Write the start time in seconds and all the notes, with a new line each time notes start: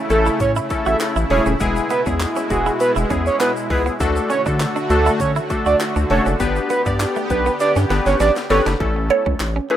Already playing: C#3 A3 E4
0.10 A1 A3 C#4 E4 A4, muted clean electric guitar stroke, closed hi-hat, shaker
0.26 E4, shaker
0.40 A2 C#5, kick, closed hi-hat, shaker
0.56 E4, shaker
0.70 A3 C#4 E4 A4, muted clean electric guitar stroke, kick, closed hi-hat, shaker
0.86 A1 F#4 E5, shaker
1.00 snare, clap, closed hi-hat, shaker
1.16 A1 E4, shaker
1.30 E1 A3 C#4 E4 G#4 C#5, muted clean electric guitar stroke, open hi-hat
1.46 D#1 C#4, shaker
1.60 E1 B2 G#3 B3 E4 G#4, kick, closed hi-hat, shaker
1.76 muted clean electric guitar stroke, shaker
1.90 B3 B4, closed hi-hat, shaker
2.06 E2 G#3 B3 C#4 E4 G#4, kick, shaker
2.20 snare, clap, closed hi-hat, shaker
2.36 C#4, shaker
2.50 E1 G#3 B3 E4 F#4 G#4, muted clean electric guitar stroke, kick, closed hi-hat, shaker
2.66 E4, shaker
2.80 B4, muted clean electric guitar stroke, closed hi-hat, shaker
2.96 E1 E4, shaker
3.10 E2 G#3 B3 C#4 E4 G#4, kick, closed hi-hat, shaker
3.26 C#5, shaker
3.40 B3 B4, snare, clap, closed hi-hat, shaker
3.56 shaker
3.70 C#2 G#3 B3 E4 G#4 B4, muted clean electric guitar stroke, kick, open hi-hat
3.86 B3, shaker
4.00 D2 D3 A3 D4 F#4 A4, kick, closed hi-hat, shaker
4.16 muted clean electric guitar stroke, shaker
4.30 C#4 C#5, closed hi-hat, shaker
4.46 D3 A3 D4 F#4 A4, kick, shaker
4.60 snare, clap, closed hi-hat, shaker
4.76 D4, shaker
4.90 D2 A3 D4 F#4 A4, muted clean electric guitar stroke, closed hi-hat, shaker
5.06 E4, shaker
5.20 D3 C#5, kick, closed hi-hat, shaker
5.36 E4, shaker
5.50 A3 D4 F#4 A4, muted clean electric guitar stroke, kick, closed hi-hat, shaker
5.66 D2 F#4 D5, shaker
5.80 snare, clap, closed hi-hat, shaker
5.96 D2 D4, shaker
6.10 F1 A3 D4 F#4 A4 C#5, muted clean electric guitar stroke, open hi-hat
6.26 F#1 C#4, shaker
6.40 G1 B3 D4 G4 B4, kick, closed hi-hat, shaker
6.56 muted clean electric guitar stroke, shaker
6.70 B3 B4, closed hi-hat, shaker
6.86 G2 B3 D4 G4 D5, kick, closed hi-hat, shaker
7.00 snare, clap, closed hi-hat, shaker
7.16 A3, shaker
7.30 B1 B3 D4 G4 B4, muted clean electric guitar stroke, kick, closed hi-hat, shaker
7.46 B3, shaker
7.60 D5, muted clean electric guitar stroke, snare, closed hi-hat, shaker
7.76 G2 C#4, snare, shaker
7.90 G1 B3 D4 G4 B4, snare, closed hi-hat, shaker
8.06 G1 C#5, snare, shaker
8.20 A1 C#4 D5, snare, closed hi-hat, shaker
8.36 snare, shaker
8.50 G1 B3 D4 G4 A4 B4 C#5, muted clean electric guitar stroke, snare, open hi-hat
8.66 F#1 D4, snare, closed hi-hat, shaker
8.80 A1 A3 C#4 E4 A4, kick, closed hi-hat
8.96 muted clean electric guitar stroke
9.10 B3 C#5, closed hi-hat
9.26 C#2 C#4, kick
9.40 A1, snare, clap, closed hi-hat
9.56 C#4
9.70 A3 C#4 E4 G#4 B4, muted clean electric guitar stroke, closed hi-hat